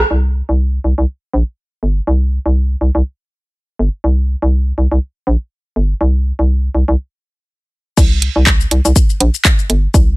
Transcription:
0, 0, Header, 1, 3, 480
1, 0, Start_track
1, 0, Tempo, 491803
1, 103, Time_signature, 4, 2, 24, 8
1, 9922, End_track
2, 0, Start_track
2, 0, Title_t, "FM bass"
2, 0, Program_c, 0, 39
2, 103, Note_on_c, 0, 36, 91
2, 409, Note_off_c, 0, 36, 0
2, 477, Note_on_c, 0, 36, 89
2, 769, Note_off_c, 0, 36, 0
2, 823, Note_on_c, 0, 36, 79
2, 915, Note_off_c, 0, 36, 0
2, 957, Note_on_c, 0, 36, 92
2, 1030, Note_off_c, 0, 36, 0
2, 1303, Note_on_c, 0, 34, 97
2, 1395, Note_off_c, 0, 34, 0
2, 1783, Note_on_c, 0, 31, 76
2, 1956, Note_off_c, 0, 31, 0
2, 2023, Note_on_c, 0, 36, 95
2, 2329, Note_off_c, 0, 36, 0
2, 2397, Note_on_c, 0, 36, 90
2, 2689, Note_off_c, 0, 36, 0
2, 2744, Note_on_c, 0, 36, 81
2, 2835, Note_off_c, 0, 36, 0
2, 2878, Note_on_c, 0, 36, 94
2, 2950, Note_off_c, 0, 36, 0
2, 3703, Note_on_c, 0, 31, 82
2, 3795, Note_off_c, 0, 31, 0
2, 3943, Note_on_c, 0, 36, 91
2, 4249, Note_off_c, 0, 36, 0
2, 4317, Note_on_c, 0, 36, 93
2, 4609, Note_off_c, 0, 36, 0
2, 4663, Note_on_c, 0, 36, 82
2, 4755, Note_off_c, 0, 36, 0
2, 4797, Note_on_c, 0, 36, 93
2, 4870, Note_off_c, 0, 36, 0
2, 5143, Note_on_c, 0, 34, 98
2, 5235, Note_off_c, 0, 34, 0
2, 5623, Note_on_c, 0, 31, 80
2, 5796, Note_off_c, 0, 31, 0
2, 5863, Note_on_c, 0, 36, 95
2, 6169, Note_off_c, 0, 36, 0
2, 6237, Note_on_c, 0, 36, 89
2, 6529, Note_off_c, 0, 36, 0
2, 6583, Note_on_c, 0, 36, 81
2, 6675, Note_off_c, 0, 36, 0
2, 6717, Note_on_c, 0, 36, 98
2, 6790, Note_off_c, 0, 36, 0
2, 7783, Note_on_c, 0, 36, 98
2, 8089, Note_off_c, 0, 36, 0
2, 8157, Note_on_c, 0, 36, 97
2, 8449, Note_off_c, 0, 36, 0
2, 8504, Note_on_c, 0, 36, 85
2, 8595, Note_off_c, 0, 36, 0
2, 8638, Note_on_c, 0, 36, 104
2, 8710, Note_off_c, 0, 36, 0
2, 8983, Note_on_c, 0, 34, 105
2, 9075, Note_off_c, 0, 34, 0
2, 9463, Note_on_c, 0, 31, 83
2, 9636, Note_off_c, 0, 31, 0
2, 9704, Note_on_c, 0, 36, 99
2, 9922, Note_off_c, 0, 36, 0
2, 9922, End_track
3, 0, Start_track
3, 0, Title_t, "Drums"
3, 7784, Note_on_c, 9, 36, 120
3, 7784, Note_on_c, 9, 49, 106
3, 7784, Note_on_c, 9, 82, 66
3, 7881, Note_off_c, 9, 36, 0
3, 7881, Note_off_c, 9, 49, 0
3, 7881, Note_off_c, 9, 82, 0
3, 8024, Note_on_c, 9, 42, 89
3, 8121, Note_off_c, 9, 42, 0
3, 8264, Note_on_c, 9, 36, 113
3, 8264, Note_on_c, 9, 39, 100
3, 8264, Note_on_c, 9, 82, 69
3, 8361, Note_off_c, 9, 36, 0
3, 8361, Note_off_c, 9, 39, 0
3, 8361, Note_off_c, 9, 82, 0
3, 8398, Note_on_c, 9, 82, 31
3, 8495, Note_off_c, 9, 82, 0
3, 8504, Note_on_c, 9, 42, 94
3, 8601, Note_off_c, 9, 42, 0
3, 8638, Note_on_c, 9, 82, 44
3, 8735, Note_off_c, 9, 82, 0
3, 8744, Note_on_c, 9, 36, 112
3, 8744, Note_on_c, 9, 82, 70
3, 8841, Note_off_c, 9, 36, 0
3, 8841, Note_off_c, 9, 82, 0
3, 8878, Note_on_c, 9, 82, 31
3, 8975, Note_off_c, 9, 82, 0
3, 8984, Note_on_c, 9, 42, 95
3, 9081, Note_off_c, 9, 42, 0
3, 9118, Note_on_c, 9, 82, 42
3, 9215, Note_off_c, 9, 82, 0
3, 9224, Note_on_c, 9, 36, 117
3, 9224, Note_on_c, 9, 39, 94
3, 9224, Note_on_c, 9, 82, 66
3, 9321, Note_off_c, 9, 36, 0
3, 9321, Note_off_c, 9, 39, 0
3, 9321, Note_off_c, 9, 82, 0
3, 9358, Note_on_c, 9, 82, 31
3, 9456, Note_off_c, 9, 82, 0
3, 9464, Note_on_c, 9, 42, 87
3, 9562, Note_off_c, 9, 42, 0
3, 9704, Note_on_c, 9, 36, 126
3, 9704, Note_on_c, 9, 82, 65
3, 9801, Note_off_c, 9, 36, 0
3, 9802, Note_off_c, 9, 82, 0
3, 9922, End_track
0, 0, End_of_file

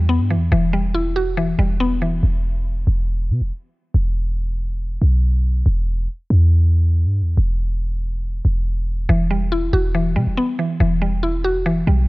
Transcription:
0, 0, Header, 1, 3, 480
1, 0, Start_track
1, 0, Key_signature, 1, "minor"
1, 0, Tempo, 428571
1, 579, Time_signature, 4, 2, 24, 8
1, 13532, End_track
2, 0, Start_track
2, 0, Title_t, "Synth pluck"
2, 0, Program_c, 0, 84
2, 0, Note_on_c, 0, 52, 91
2, 0, Note_on_c, 0, 55, 78
2, 0, Note_on_c, 0, 64, 87
2, 0, Note_on_c, 0, 66, 91
2, 100, Note_on_c, 0, 59, 88
2, 326, Note_off_c, 0, 52, 0
2, 339, Note_off_c, 0, 64, 0
2, 340, Note_on_c, 0, 52, 79
2, 566, Note_off_c, 0, 52, 0
2, 579, Note_off_c, 0, 66, 0
2, 580, Note_on_c, 0, 52, 104
2, 807, Note_off_c, 0, 55, 0
2, 820, Note_on_c, 0, 55, 84
2, 1059, Note_on_c, 0, 64, 86
2, 1300, Note_off_c, 0, 59, 0
2, 1300, Note_on_c, 0, 66, 91
2, 1526, Note_off_c, 0, 52, 0
2, 1540, Note_on_c, 0, 52, 98
2, 1766, Note_off_c, 0, 55, 0
2, 1779, Note_on_c, 0, 55, 84
2, 2019, Note_on_c, 0, 59, 98
2, 2246, Note_off_c, 0, 52, 0
2, 2259, Note_off_c, 0, 64, 0
2, 2260, Note_on_c, 0, 52, 78
2, 2499, Note_off_c, 0, 55, 0
2, 2499, Note_off_c, 0, 59, 0
2, 2500, Note_off_c, 0, 52, 0
2, 2500, Note_off_c, 0, 66, 0
2, 10181, Note_on_c, 0, 52, 94
2, 10421, Note_on_c, 0, 55, 81
2, 10661, Note_on_c, 0, 64, 93
2, 10900, Note_on_c, 0, 66, 93
2, 11127, Note_off_c, 0, 52, 0
2, 11141, Note_on_c, 0, 52, 93
2, 11366, Note_off_c, 0, 55, 0
2, 11379, Note_on_c, 0, 55, 83
2, 11620, Note_on_c, 0, 59, 92
2, 11847, Note_off_c, 0, 52, 0
2, 11860, Note_off_c, 0, 64, 0
2, 11860, Note_on_c, 0, 52, 80
2, 12086, Note_off_c, 0, 52, 0
2, 12100, Note_off_c, 0, 66, 0
2, 12100, Note_on_c, 0, 52, 92
2, 12326, Note_off_c, 0, 55, 0
2, 12340, Note_on_c, 0, 55, 82
2, 12579, Note_on_c, 0, 64, 90
2, 12819, Note_on_c, 0, 66, 94
2, 12820, Note_off_c, 0, 59, 0
2, 13046, Note_off_c, 0, 52, 0
2, 13059, Note_on_c, 0, 52, 97
2, 13286, Note_off_c, 0, 55, 0
2, 13300, Note_on_c, 0, 55, 78
2, 13532, Note_off_c, 0, 52, 0
2, 13532, Note_off_c, 0, 55, 0
2, 13532, Note_off_c, 0, 64, 0
2, 13532, Note_off_c, 0, 66, 0
2, 13532, End_track
3, 0, Start_track
3, 0, Title_t, "808-style bass"
3, 0, Program_c, 1, 38
3, 0, Note_on_c, 1, 40, 108
3, 219, Note_on_c, 1, 43, 96
3, 236, Note_off_c, 1, 40, 0
3, 400, Note_on_c, 1, 40, 99
3, 417, Note_off_c, 1, 43, 0
3, 571, Note_off_c, 1, 40, 0
3, 580, Note_on_c, 1, 28, 114
3, 1735, Note_off_c, 1, 28, 0
3, 1779, Note_on_c, 1, 28, 99
3, 2470, Note_off_c, 1, 28, 0
3, 2499, Note_on_c, 1, 28, 107
3, 3190, Note_off_c, 1, 28, 0
3, 3218, Note_on_c, 1, 28, 107
3, 3699, Note_on_c, 1, 47, 96
3, 3716, Note_off_c, 1, 28, 0
3, 3819, Note_on_c, 1, 28, 101
3, 3836, Note_off_c, 1, 47, 0
3, 3933, Note_off_c, 1, 28, 0
3, 4419, Note_on_c, 1, 28, 114
3, 5574, Note_off_c, 1, 28, 0
3, 5619, Note_on_c, 1, 35, 102
3, 6310, Note_off_c, 1, 35, 0
3, 6339, Note_on_c, 1, 28, 111
3, 6800, Note_off_c, 1, 28, 0
3, 7059, Note_on_c, 1, 40, 105
3, 7900, Note_on_c, 1, 43, 99
3, 7917, Note_off_c, 1, 40, 0
3, 8080, Note_on_c, 1, 40, 96
3, 8097, Note_off_c, 1, 43, 0
3, 8251, Note_off_c, 1, 40, 0
3, 8260, Note_on_c, 1, 28, 113
3, 9415, Note_off_c, 1, 28, 0
3, 9460, Note_on_c, 1, 28, 101
3, 10151, Note_off_c, 1, 28, 0
3, 10180, Note_on_c, 1, 28, 111
3, 10871, Note_off_c, 1, 28, 0
3, 10900, Note_on_c, 1, 28, 108
3, 11380, Note_on_c, 1, 47, 98
3, 11397, Note_off_c, 1, 28, 0
3, 11500, Note_on_c, 1, 28, 99
3, 11517, Note_off_c, 1, 47, 0
3, 11614, Note_off_c, 1, 28, 0
3, 12100, Note_on_c, 1, 28, 113
3, 13255, Note_off_c, 1, 28, 0
3, 13300, Note_on_c, 1, 35, 103
3, 13532, Note_off_c, 1, 35, 0
3, 13532, End_track
0, 0, End_of_file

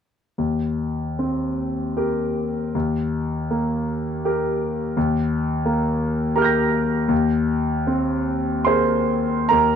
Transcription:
0, 0, Header, 1, 2, 480
1, 0, Start_track
1, 0, Key_signature, -3, "major"
1, 0, Tempo, 796813
1, 232, Time_signature, 3, 2, 24, 8
1, 1186, Tempo, 765306
1, 2146, Tempo, 722022
1, 4546, Tempo, 765306
1, 5026, Tempo, 815217
1, 6134, End_track
2, 0, Start_track
2, 0, Title_t, "Grand piano"
2, 0, Program_c, 0, 0
2, 230, Note_on_c, 0, 39, 36
2, 345, Control_c, 0, 64, 127
2, 716, Note_on_c, 0, 60, 31
2, 1185, Note_on_c, 0, 67, 29
2, 1186, Note_on_c, 0, 70, 31
2, 1484, Note_off_c, 0, 60, 0
2, 1647, Note_off_c, 0, 39, 0
2, 1648, Note_off_c, 0, 67, 0
2, 1649, Note_off_c, 0, 70, 0
2, 1674, Note_on_c, 0, 39, 45
2, 1683, Control_c, 0, 64, 0
2, 1795, Control_c, 0, 64, 127
2, 2150, Note_on_c, 0, 58, 36
2, 2645, Note_on_c, 0, 67, 36
2, 2646, Note_on_c, 0, 70, 37
2, 2928, Note_off_c, 0, 58, 0
2, 3089, Note_off_c, 0, 39, 0
2, 3093, Note_off_c, 0, 67, 0
2, 3094, Note_off_c, 0, 70, 0
2, 3122, Note_on_c, 0, 39, 52
2, 3128, Control_c, 0, 64, 0
2, 3239, Control_c, 0, 64, 127
2, 3579, Note_on_c, 0, 58, 42
2, 4045, Note_on_c, 0, 82, 35
2, 4046, Note_on_c, 0, 67, 41
2, 4049, Note_on_c, 0, 70, 44
2, 4061, Note_on_c, 0, 89, 34
2, 4087, Note_on_c, 0, 91, 38
2, 4104, Note_on_c, 0, 94, 35
2, 4345, Note_off_c, 0, 58, 0
2, 4512, Note_off_c, 0, 82, 0
2, 4513, Note_off_c, 0, 67, 0
2, 4515, Note_off_c, 0, 70, 0
2, 4519, Note_off_c, 0, 39, 0
2, 4521, Note_off_c, 0, 89, 0
2, 4529, Note_on_c, 0, 39, 51
2, 4534, Note_off_c, 0, 91, 0
2, 4542, Note_off_c, 0, 94, 0
2, 4556, Control_c, 0, 64, 0
2, 4647, Control_c, 0, 64, 127
2, 5023, Note_on_c, 0, 60, 38
2, 5480, Note_on_c, 0, 84, 57
2, 5492, Note_on_c, 0, 72, 44
2, 5494, Note_on_c, 0, 68, 33
2, 5500, Note_on_c, 0, 70, 35
2, 5796, Note_off_c, 0, 60, 0
2, 5959, Note_off_c, 0, 39, 0
2, 5963, Note_off_c, 0, 72, 0
2, 5964, Note_off_c, 0, 68, 0
2, 5967, Note_off_c, 0, 70, 0
2, 5975, Note_on_c, 0, 82, 63
2, 5981, Note_off_c, 0, 84, 0
2, 5986, Note_on_c, 0, 70, 49
2, 5991, Note_on_c, 0, 39, 40
2, 6000, Control_c, 0, 64, 0
2, 6104, Control_c, 0, 64, 127
2, 6134, Note_off_c, 0, 39, 0
2, 6134, Note_off_c, 0, 70, 0
2, 6134, Note_off_c, 0, 82, 0
2, 6134, End_track
0, 0, End_of_file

